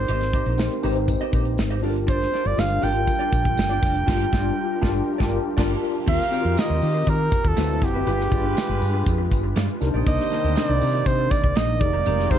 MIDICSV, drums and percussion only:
0, 0, Header, 1, 2, 480
1, 0, Start_track
1, 0, Tempo, 498753
1, 85, Time_signature, 4, 2, 24, 8
1, 11921, End_track
2, 0, Start_track
2, 0, Title_t, "Drums"
2, 80, Note_on_c, 9, 42, 108
2, 176, Note_off_c, 9, 42, 0
2, 200, Note_on_c, 9, 42, 59
2, 210, Note_on_c, 9, 38, 35
2, 296, Note_off_c, 9, 42, 0
2, 306, Note_off_c, 9, 38, 0
2, 317, Note_on_c, 9, 54, 38
2, 322, Note_on_c, 9, 36, 98
2, 323, Note_on_c, 9, 42, 61
2, 413, Note_off_c, 9, 54, 0
2, 418, Note_off_c, 9, 36, 0
2, 419, Note_off_c, 9, 42, 0
2, 444, Note_on_c, 9, 42, 59
2, 540, Note_off_c, 9, 42, 0
2, 558, Note_on_c, 9, 54, 76
2, 572, Note_on_c, 9, 38, 97
2, 654, Note_off_c, 9, 54, 0
2, 668, Note_off_c, 9, 38, 0
2, 679, Note_on_c, 9, 42, 62
2, 776, Note_off_c, 9, 42, 0
2, 801, Note_on_c, 9, 46, 79
2, 802, Note_on_c, 9, 54, 52
2, 897, Note_off_c, 9, 46, 0
2, 899, Note_off_c, 9, 54, 0
2, 920, Note_on_c, 9, 42, 40
2, 1016, Note_off_c, 9, 42, 0
2, 1041, Note_on_c, 9, 36, 73
2, 1041, Note_on_c, 9, 42, 72
2, 1042, Note_on_c, 9, 54, 51
2, 1137, Note_off_c, 9, 36, 0
2, 1137, Note_off_c, 9, 42, 0
2, 1138, Note_off_c, 9, 54, 0
2, 1164, Note_on_c, 9, 42, 41
2, 1260, Note_off_c, 9, 42, 0
2, 1279, Note_on_c, 9, 54, 50
2, 1280, Note_on_c, 9, 36, 89
2, 1282, Note_on_c, 9, 42, 79
2, 1375, Note_off_c, 9, 54, 0
2, 1376, Note_off_c, 9, 36, 0
2, 1378, Note_off_c, 9, 42, 0
2, 1398, Note_on_c, 9, 42, 51
2, 1494, Note_off_c, 9, 42, 0
2, 1521, Note_on_c, 9, 54, 87
2, 1530, Note_on_c, 9, 38, 94
2, 1617, Note_off_c, 9, 54, 0
2, 1626, Note_off_c, 9, 38, 0
2, 1643, Note_on_c, 9, 42, 56
2, 1739, Note_off_c, 9, 42, 0
2, 1765, Note_on_c, 9, 46, 74
2, 1861, Note_off_c, 9, 46, 0
2, 1888, Note_on_c, 9, 42, 44
2, 1984, Note_off_c, 9, 42, 0
2, 2003, Note_on_c, 9, 36, 115
2, 2006, Note_on_c, 9, 54, 30
2, 2007, Note_on_c, 9, 42, 94
2, 2100, Note_off_c, 9, 36, 0
2, 2102, Note_off_c, 9, 54, 0
2, 2103, Note_off_c, 9, 42, 0
2, 2128, Note_on_c, 9, 42, 55
2, 2138, Note_on_c, 9, 38, 34
2, 2224, Note_off_c, 9, 42, 0
2, 2235, Note_off_c, 9, 38, 0
2, 2241, Note_on_c, 9, 54, 40
2, 2249, Note_on_c, 9, 42, 62
2, 2259, Note_on_c, 9, 38, 33
2, 2337, Note_off_c, 9, 54, 0
2, 2345, Note_off_c, 9, 42, 0
2, 2355, Note_off_c, 9, 38, 0
2, 2361, Note_on_c, 9, 42, 50
2, 2457, Note_off_c, 9, 42, 0
2, 2483, Note_on_c, 9, 54, 81
2, 2491, Note_on_c, 9, 38, 96
2, 2579, Note_off_c, 9, 54, 0
2, 2588, Note_off_c, 9, 38, 0
2, 2599, Note_on_c, 9, 42, 58
2, 2695, Note_off_c, 9, 42, 0
2, 2718, Note_on_c, 9, 46, 82
2, 2723, Note_on_c, 9, 54, 50
2, 2814, Note_off_c, 9, 46, 0
2, 2819, Note_off_c, 9, 54, 0
2, 2836, Note_on_c, 9, 42, 48
2, 2932, Note_off_c, 9, 42, 0
2, 2956, Note_on_c, 9, 42, 68
2, 2958, Note_on_c, 9, 36, 76
2, 2962, Note_on_c, 9, 54, 48
2, 3052, Note_off_c, 9, 42, 0
2, 3055, Note_off_c, 9, 36, 0
2, 3058, Note_off_c, 9, 54, 0
2, 3083, Note_on_c, 9, 42, 45
2, 3180, Note_off_c, 9, 42, 0
2, 3198, Note_on_c, 9, 54, 49
2, 3201, Note_on_c, 9, 36, 92
2, 3205, Note_on_c, 9, 42, 77
2, 3294, Note_off_c, 9, 54, 0
2, 3297, Note_off_c, 9, 36, 0
2, 3301, Note_off_c, 9, 42, 0
2, 3320, Note_on_c, 9, 42, 49
2, 3322, Note_on_c, 9, 36, 97
2, 3417, Note_off_c, 9, 42, 0
2, 3419, Note_off_c, 9, 36, 0
2, 3439, Note_on_c, 9, 54, 89
2, 3456, Note_on_c, 9, 38, 95
2, 3535, Note_off_c, 9, 54, 0
2, 3553, Note_off_c, 9, 38, 0
2, 3565, Note_on_c, 9, 42, 51
2, 3661, Note_off_c, 9, 42, 0
2, 3681, Note_on_c, 9, 54, 28
2, 3683, Note_on_c, 9, 36, 99
2, 3688, Note_on_c, 9, 46, 84
2, 3697, Note_on_c, 9, 38, 31
2, 3778, Note_off_c, 9, 54, 0
2, 3779, Note_off_c, 9, 36, 0
2, 3784, Note_off_c, 9, 46, 0
2, 3793, Note_off_c, 9, 38, 0
2, 3807, Note_on_c, 9, 42, 49
2, 3903, Note_off_c, 9, 42, 0
2, 3925, Note_on_c, 9, 36, 120
2, 3927, Note_on_c, 9, 49, 80
2, 3936, Note_on_c, 9, 38, 101
2, 4022, Note_off_c, 9, 36, 0
2, 4023, Note_off_c, 9, 49, 0
2, 4033, Note_off_c, 9, 38, 0
2, 4165, Note_on_c, 9, 36, 109
2, 4177, Note_on_c, 9, 38, 92
2, 4262, Note_off_c, 9, 36, 0
2, 4273, Note_off_c, 9, 38, 0
2, 4646, Note_on_c, 9, 36, 102
2, 4658, Note_on_c, 9, 38, 102
2, 4743, Note_off_c, 9, 36, 0
2, 4754, Note_off_c, 9, 38, 0
2, 5007, Note_on_c, 9, 36, 104
2, 5019, Note_on_c, 9, 38, 102
2, 5104, Note_off_c, 9, 36, 0
2, 5115, Note_off_c, 9, 38, 0
2, 5367, Note_on_c, 9, 36, 101
2, 5369, Note_on_c, 9, 49, 83
2, 5379, Note_on_c, 9, 38, 92
2, 5463, Note_off_c, 9, 36, 0
2, 5466, Note_off_c, 9, 49, 0
2, 5475, Note_off_c, 9, 38, 0
2, 5847, Note_on_c, 9, 49, 95
2, 5848, Note_on_c, 9, 36, 116
2, 5943, Note_off_c, 9, 49, 0
2, 5944, Note_off_c, 9, 36, 0
2, 5977, Note_on_c, 9, 38, 36
2, 6073, Note_off_c, 9, 38, 0
2, 6086, Note_on_c, 9, 54, 46
2, 6093, Note_on_c, 9, 42, 60
2, 6182, Note_off_c, 9, 54, 0
2, 6189, Note_off_c, 9, 42, 0
2, 6325, Note_on_c, 9, 54, 77
2, 6328, Note_on_c, 9, 42, 80
2, 6340, Note_on_c, 9, 38, 106
2, 6421, Note_off_c, 9, 54, 0
2, 6424, Note_off_c, 9, 42, 0
2, 6436, Note_off_c, 9, 38, 0
2, 6565, Note_on_c, 9, 46, 87
2, 6569, Note_on_c, 9, 54, 52
2, 6661, Note_off_c, 9, 46, 0
2, 6665, Note_off_c, 9, 54, 0
2, 6802, Note_on_c, 9, 42, 73
2, 6804, Note_on_c, 9, 36, 74
2, 6808, Note_on_c, 9, 54, 46
2, 6898, Note_off_c, 9, 42, 0
2, 6901, Note_off_c, 9, 36, 0
2, 6904, Note_off_c, 9, 54, 0
2, 7043, Note_on_c, 9, 54, 52
2, 7045, Note_on_c, 9, 36, 101
2, 7050, Note_on_c, 9, 42, 77
2, 7139, Note_off_c, 9, 54, 0
2, 7141, Note_off_c, 9, 36, 0
2, 7146, Note_off_c, 9, 42, 0
2, 7166, Note_on_c, 9, 36, 92
2, 7262, Note_off_c, 9, 36, 0
2, 7283, Note_on_c, 9, 42, 89
2, 7287, Note_on_c, 9, 54, 88
2, 7296, Note_on_c, 9, 38, 100
2, 7379, Note_off_c, 9, 42, 0
2, 7384, Note_off_c, 9, 54, 0
2, 7392, Note_off_c, 9, 38, 0
2, 7524, Note_on_c, 9, 36, 102
2, 7527, Note_on_c, 9, 42, 81
2, 7535, Note_on_c, 9, 38, 37
2, 7620, Note_off_c, 9, 36, 0
2, 7623, Note_off_c, 9, 42, 0
2, 7632, Note_off_c, 9, 38, 0
2, 7765, Note_on_c, 9, 42, 102
2, 7769, Note_on_c, 9, 54, 29
2, 7862, Note_off_c, 9, 42, 0
2, 7865, Note_off_c, 9, 54, 0
2, 7894, Note_on_c, 9, 38, 40
2, 7990, Note_off_c, 9, 38, 0
2, 8005, Note_on_c, 9, 36, 103
2, 8005, Note_on_c, 9, 42, 59
2, 8005, Note_on_c, 9, 54, 48
2, 8101, Note_off_c, 9, 36, 0
2, 8101, Note_off_c, 9, 42, 0
2, 8101, Note_off_c, 9, 54, 0
2, 8246, Note_on_c, 9, 42, 81
2, 8250, Note_on_c, 9, 54, 80
2, 8258, Note_on_c, 9, 38, 110
2, 8342, Note_off_c, 9, 42, 0
2, 8346, Note_off_c, 9, 54, 0
2, 8354, Note_off_c, 9, 38, 0
2, 8488, Note_on_c, 9, 54, 54
2, 8490, Note_on_c, 9, 46, 78
2, 8584, Note_off_c, 9, 54, 0
2, 8586, Note_off_c, 9, 46, 0
2, 8723, Note_on_c, 9, 42, 79
2, 8724, Note_on_c, 9, 36, 78
2, 8725, Note_on_c, 9, 54, 49
2, 8820, Note_off_c, 9, 36, 0
2, 8820, Note_off_c, 9, 42, 0
2, 8821, Note_off_c, 9, 54, 0
2, 8965, Note_on_c, 9, 36, 83
2, 8965, Note_on_c, 9, 54, 45
2, 8970, Note_on_c, 9, 42, 77
2, 9061, Note_off_c, 9, 36, 0
2, 9062, Note_off_c, 9, 54, 0
2, 9066, Note_off_c, 9, 42, 0
2, 9200, Note_on_c, 9, 42, 88
2, 9205, Note_on_c, 9, 54, 88
2, 9213, Note_on_c, 9, 38, 109
2, 9296, Note_off_c, 9, 42, 0
2, 9301, Note_off_c, 9, 54, 0
2, 9310, Note_off_c, 9, 38, 0
2, 9442, Note_on_c, 9, 54, 30
2, 9447, Note_on_c, 9, 42, 77
2, 9455, Note_on_c, 9, 38, 34
2, 9538, Note_off_c, 9, 54, 0
2, 9543, Note_off_c, 9, 42, 0
2, 9552, Note_off_c, 9, 38, 0
2, 9685, Note_on_c, 9, 54, 29
2, 9687, Note_on_c, 9, 36, 119
2, 9689, Note_on_c, 9, 42, 97
2, 9781, Note_off_c, 9, 54, 0
2, 9783, Note_off_c, 9, 36, 0
2, 9785, Note_off_c, 9, 42, 0
2, 9817, Note_on_c, 9, 38, 35
2, 9914, Note_off_c, 9, 38, 0
2, 9921, Note_on_c, 9, 54, 42
2, 9929, Note_on_c, 9, 42, 63
2, 9938, Note_on_c, 9, 38, 35
2, 10017, Note_off_c, 9, 54, 0
2, 10025, Note_off_c, 9, 42, 0
2, 10035, Note_off_c, 9, 38, 0
2, 10164, Note_on_c, 9, 42, 85
2, 10166, Note_on_c, 9, 54, 85
2, 10176, Note_on_c, 9, 38, 96
2, 10260, Note_off_c, 9, 42, 0
2, 10262, Note_off_c, 9, 54, 0
2, 10272, Note_off_c, 9, 38, 0
2, 10404, Note_on_c, 9, 46, 83
2, 10406, Note_on_c, 9, 54, 53
2, 10500, Note_off_c, 9, 46, 0
2, 10502, Note_off_c, 9, 54, 0
2, 10645, Note_on_c, 9, 36, 83
2, 10645, Note_on_c, 9, 42, 79
2, 10650, Note_on_c, 9, 54, 48
2, 10741, Note_off_c, 9, 42, 0
2, 10742, Note_off_c, 9, 36, 0
2, 10746, Note_off_c, 9, 54, 0
2, 10887, Note_on_c, 9, 36, 91
2, 10887, Note_on_c, 9, 54, 51
2, 10891, Note_on_c, 9, 42, 79
2, 10983, Note_off_c, 9, 36, 0
2, 10984, Note_off_c, 9, 54, 0
2, 10987, Note_off_c, 9, 42, 0
2, 11007, Note_on_c, 9, 36, 86
2, 11103, Note_off_c, 9, 36, 0
2, 11120, Note_on_c, 9, 42, 88
2, 11131, Note_on_c, 9, 54, 85
2, 11133, Note_on_c, 9, 38, 108
2, 11216, Note_off_c, 9, 42, 0
2, 11227, Note_off_c, 9, 54, 0
2, 11229, Note_off_c, 9, 38, 0
2, 11363, Note_on_c, 9, 42, 86
2, 11365, Note_on_c, 9, 36, 92
2, 11459, Note_off_c, 9, 42, 0
2, 11461, Note_off_c, 9, 36, 0
2, 11605, Note_on_c, 9, 42, 108
2, 11702, Note_off_c, 9, 42, 0
2, 11734, Note_on_c, 9, 38, 37
2, 11830, Note_off_c, 9, 38, 0
2, 11846, Note_on_c, 9, 36, 89
2, 11847, Note_on_c, 9, 42, 57
2, 11847, Note_on_c, 9, 54, 41
2, 11921, Note_off_c, 9, 36, 0
2, 11921, Note_off_c, 9, 42, 0
2, 11921, Note_off_c, 9, 54, 0
2, 11921, End_track
0, 0, End_of_file